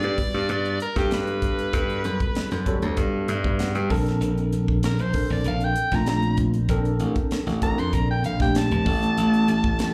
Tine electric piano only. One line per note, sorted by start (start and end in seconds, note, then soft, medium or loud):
0.18 0.81 G3 medium
0.18 0.82 B3 medium
0.18 0.82 F#4 medium
0.18 0.82 B4 medium
0.96 1.59 G3 medium
0.96 1.60 B3 medium
0.96 1.60 F#4 medium
0.96 1.60 A4 medium
1.74 2.50 G3 medium
1.74 2.50 B3 medium
1.74 2.50 F#4 medium
1.74 2.50 A4 medium
2.66 3.30 G3 medium
2.66 3.30 B3 medium
2.66 3.30 F#4 medium
2.66 3.30 A4 medium
2.66 2.95 C#5 medium
2.98 3.26 D5 medium
3.29 3.58 E5 medium
3.45 3.90 G3 medium
3.45 3.90 B3 medium
3.45 3.91 F#4 medium
3.45 3.91 B4 medium
3.60 3.74 F#5 medium
3.75 3.89 G5 medium
3.90 4.92 C4 medium
3.90 4.92 D4 medium
3.90 4.92 A4 medium
3.90 4.92 A#4 loud
3.90 4.19 A5 medium
5.14 5.78 C4 medium
5.14 5.78 D4 medium
5.14 5.78 A4 medium
5.14 5.78 A#4 medium
5.93 6.56 A3 medium
5.93 6.56 C4 medium
5.93 6.56 D4 medium
5.93 6.56 F4 medium
6.70 7.46 C4 medium
6.70 7.46 D4 medium
6.70 7.46 A4 medium
6.70 7.46 A#4 loud
7.63 8.26 C4 medium
7.63 8.26 D4 medium
7.63 8.26 A4 medium
7.63 8.26 A#4 medium
8.40 8.84 A3 medium
8.40 8.86 C4 medium
8.40 8.86 D4 medium
8.40 8.87 G4 medium
8.85 9.87 A3 medium
8.85 9.87 B3 medium
8.85 9.88 C#4 medium
8.85 9.88 A4 medium